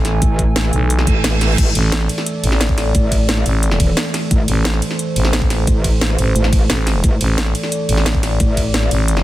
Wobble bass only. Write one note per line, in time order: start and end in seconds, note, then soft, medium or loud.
0.22 0.72 A1 loud
1.07 1.57 A1 loud
1.58 1.74 A1 loud
2.95 3.44 A1 loud
3.80 3.96 E1 loud
4.31 4.47 A1 loud
5.67 6.17 A1 loud
6.36 6.68 A1 loud
7.04 7.19 A1 loud
8.40 8.90 A1 medium